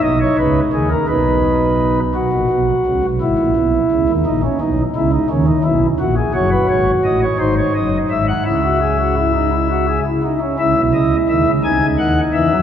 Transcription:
<<
  \new Staff \with { instrumentName = "Pipe organ" } { \time 6/8 \key b \major \tempo 4. = 57 << { dis''16 cis''16 b'8 gis'16 ais'16 b'4. | r2. | r2. | \key cis \minor cis''16 b'16 cis''8 dis''16 cis''16 bis'16 cis''16 dis''8 e''16 fis''16 |
e''2~ e''8 r8 | e''8 dis''8 e''8 gis''8 fis''8 e''8 | } \\ { dis'4. dis'4. | fis'4. e'4. | dis'16 cis'16 dis'8 e'16 dis'16 cis'16 dis'16 e'8 fis'16 gis'16 | fis'4. dis'4. |
e'16 fis'16 gis'16 fis'16 e'16 dis'16 e'16 fis'16 gis'16 e'16 dis'16 cis'16 | e'4. dis'4. | } >> }
  \new Staff \with { instrumentName = "Pipe organ" } { \clef bass \time 6/8 \key b \major <b,, b,>8 <cis, cis>8 <dis, dis>8 <b,, b,>4. | <b,, b,>16 <ais,, ais,>16 <b,, b,>8 <cis, cis>16 <b,, b,>16 <gis,, gis,>16 <ais,, ais,>16 <b,, b,>8 <cis, cis>16 <dis, dis>16 | <ais,, ais,>8 <b,, b,>8 <cis, cis>8 <dis, dis>8 <b,, b,>8 <ais,, ais,>8 | \key cis \minor <fis,, fis,>8 <gis,, gis,>8 <a,, a,>8 <gis,, gis,>8 <fis,, fis,>8 <gis,, gis,>8 |
<cis, cis>2~ <cis, cis>8 r8 | <cis, cis>16 <b,, b,>16 <cis, cis>8 <dis, dis>16 <cis, cis>16 <bis,, bis,>16 <cis, cis>16 <dis, dis>8 <e, e>16 <fis, fis>16 | }
>>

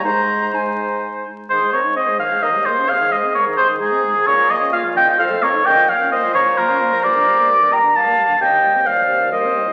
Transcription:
<<
  \new Staff \with { instrumentName = "Oboe" } { \time 3/4 \key aes \major \tempo 4 = 130 c''4 c''4. r8 | c''8 des''8 ees''8 f''8 ees''8 c''8 | f''8 ees''8 des''8 c''8 aes'4 | des''8 ees''8 f''8 g''8 f''8 des''8 |
g''8 f''8 ees''8 des''8 bes'4 | \key g \minor d''4. bes''8 a''4 | g''4 f''4 ees''4 | }
  \new Staff \with { instrumentName = "Flute" } { \time 3/4 \key aes \major bes''4 aes''4 r4 | aes'8 bes'8 c''8 des''8 bes'8 aes'8 | des''8 c''8 bes'8 aes'8 ees'4 | bes'8 c''8 des''8 ees''8 c''8 bes'8 |
ees''8 des''8 c''8 bes'8 f'4 | \key g \minor bes'4. g''8 f''4 | ees''4 d''4 c''4 | }
  \new Staff \with { instrumentName = "Clarinet" } { \time 3/4 \key aes \major ees'4 ees'4. r8 | r4 c''2 | aes'2.~ | aes'4 f'4 a'4 |
bes'4 c''2~ | \key g \minor c''4 bes'4. r8 | g'4 c''4 bes'4 | }
  \new Staff \with { instrumentName = "French horn" } { \clef bass \time 3/4 \key aes \major aes4 aes4. r8 | ees16 aes16 c'16 ees'16 c'16 aes16 ees16 aes16 ees16 g16 bes16 des'16 | c16 ees16 aes16 c'16 aes16 ees16 c16 ees16 aes16 c'16 aes16 ees16 | des16 f16 bes16 des'16 bes16 f16 des16 f16 f16 a16 c'16 ees'16 |
des16 f16 bes16 des'16 bes16 f16 des16 f16 bes16 des'16 bes16 f16 | \key g \minor bes,16 d16 g16 bes16 g16 d16 bes,16 d16 g16 bes16 g16 d16 | c16 ees16 g16 c'16 g16 ees16 c16 ees16 g16 c'16 g16 ees16 | }
  \new Staff \with { instrumentName = "Bassoon" } { \clef bass \time 3/4 \key aes \major aes,2~ aes,8 r8 | aes,2 ees,4 | aes,2. | bes,2 f,4 |
bes,2. | \key g \minor g,2~ g,8 r8 | ees,2. | }
>>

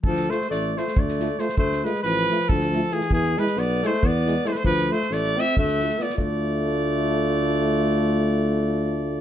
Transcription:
<<
  \new Staff \with { instrumentName = "Trumpet" } { \time 7/8 \tempo 4 = 137 a'8 c''8 d''8 c''8 d''4 c''8 | c''8 b'8 b'4 a'4 gis'8 | gis'8 b'8 d''8 c''8 d''4 c''32 b'32 c''16 | b'8 c''8 d''8 e''8 e''4 d''8 |
d''2.~ d''8~ | d''2.~ d''8 | }
  \new Staff \with { instrumentName = "French horn" } { \time 7/8 r8 f'8 r8 f'8 r8 f'8 f'8 | r8 f'8 r8 f'8 r8 f'8 f'8 | r8 e'8 r8 e'8 r8 e'8 e'8 | r8 f'8 r8 f'8 r8 f'8 f'8 |
f'2.~ f'8~ | f'2.~ f'8 | }
  \new Staff \with { instrumentName = "Alto saxophone" } { \time 7/8 f8 a8 a8 a8 a4 a8 | a8 gis8 f4 f4 e8 | e8 gis8 b8 a8 b4 a32 gis32 a16 | f8 a8 a8 c'8 a4 b8 |
a2.~ a8~ | a2.~ a8 | }
  \new Staff \with { instrumentName = "Euphonium" } { \time 7/8 r8 a8 r8 a8 r8 a8 a8 | r8 a8 r8 a8 r8 a8 a8 | r8 gis8 r8 gis8 r8 gis8 gis8 | r8 a8 r8 a8 r8 a8 a8 |
a2.~ a8~ | a2.~ a8 | }
  \new Staff \with { instrumentName = "Tuba" } { \clef bass \time 7/8 d,4 a,,4 d,4. | d,4 a,,4 d,4. | e,4 b,,4 e,4. | d,4 a,,4 d,4. |
d,2.~ d,8~ | d,2.~ d,8 | }
  \new DrumStaff \with { instrumentName = "Drums" } \drummode { \time 7/8 bd16 sn16 sn16 sn16 sn8 sn16 sn16 bd16 sn16 sn8 sn16 sn16 | bd16 sn16 sn16 sn16 sn8 sn16 sn16 bd16 sn16 sn8 sn16 sn16 | bd16 sn16 sn16 sn16 sn8 sn16 sn16 bd8 sn8 sn16 sn16 | bd16 sn16 sn16 sn16 sn16 sn16 sn16 sn16 bd16 sn16 sn16 sn16 sn16 sn16 |
bd4 r4 r4. | r4 r4 r4. | }
>>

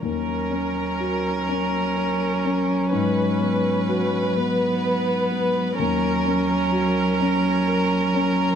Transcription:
<<
  \new Staff \with { instrumentName = "Violin section" } { \time 6/8 \key ees \minor \tempo 4. = 42 bes'2. | ces''2. | bes'2. | }
  \new Staff \with { instrumentName = "Grand piano" } { \time 6/8 \key ees \minor ees,8 des'8 ges'8 des'8 bes'8 des'8 | aes,8 ces'8 ges'8 ces'8 ces''8 ces'8 | ees,8 des'8 ges'8 des'8 bes'8 des'8 | }
  \new Staff \with { instrumentName = "Viola" } { \time 6/8 \key ees \minor des'2.~ | des'4. ces'4. | des'2. | }
  \new Staff \with { instrumentName = "Cello" } { \clef bass \time 6/8 \key ees \minor ges2.~ | ges2. | ges2. | }
>>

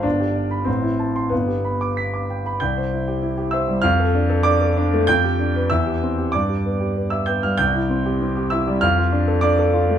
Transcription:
\new Staff \with { instrumentName = "Grand piano" } { \time 2/4 \key c \major \tempo 4 = 96 << { d'4 c'4 | b4. r8 | <g'' g'''>4. <e'' e'''>8 | <f'' f'''>4 <d'' d'''>4 |
<g'' g'''>4 <e'' e'''>4 | <d'' d'''>4 r16 <e'' e'''>16 <g'' g'''>16 <f'' f'''>16 | <g'' g'''>4. <e'' e'''>8 | <f'' f'''>4 <d'' d'''>4 | } \\ { g,,16 g'16 d''16 b''16 a,,16 e'16 a''16 c'''16 | g,,16 g'16 b''16 d'''16 b'''16 d'''16 g''16 b''16 | c,16 c''16 e'16 g'16 e'16 g'16 c''16 g16 | f,16 a'16 d'16 a'16 d'16 a'16 d'16 a16 |
f,16 g'16 d'16 b'16 e,16 g'16 c'16 g'16 | g,16 g'16 b16 g'16 b16 g'16 b16 g16 | c,16 e'16 c'16 g'16 c'16 g'16 e'16 g16 | f,16 f'16 d'16 a'16 d'16 a'16 f'16 a16 | } >> }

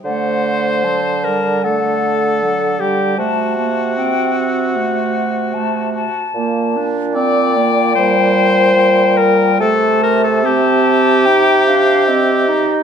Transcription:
<<
  \new Staff \with { instrumentName = "Flute" } { \time 4/4 \key g \minor \tempo 4 = 75 fis''4 a''4 fis''4 fis''8 g''8 | a''8 a''8 g''8 fis''4. a''8 a''8~ | a''8 r8 g''2 g''4 | a''4 a''4 g''8 f''8 ees''4 | }
  \new Staff \with { instrumentName = "French horn" } { \time 4/4 \key g \minor c''4. bes'8 a'4. g'8 | fis'1 | r4 d''4 c''4. bes'8 | a'8 bes'16 a'16 g'2. | }
  \new Staff \with { instrumentName = "Oboe" } { \time 4/4 \key g \minor c''4. bes'8 a'4. g'8 | fis'1 | r4 d''4 c''4. bes'8 | a'8 bes'16 a'16 g'2. | }
  \new Staff \with { instrumentName = "Clarinet" } { \time 4/4 \key g \minor a4 fis8 g8 a4 fis8 g8 | a8 bes8 c'4 a4 a8 r8 | bes8 d'8 c'8 bes8 g4 g4 | a4 c'4 ees'8 d'8 c'8 ees'8 | }
  \new Staff \with { instrumentName = "Bassoon" } { \clef bass \time 4/4 \key g \minor d1 | c2.~ c8 r8 | bes,1 | c2.~ c8 r8 | }
>>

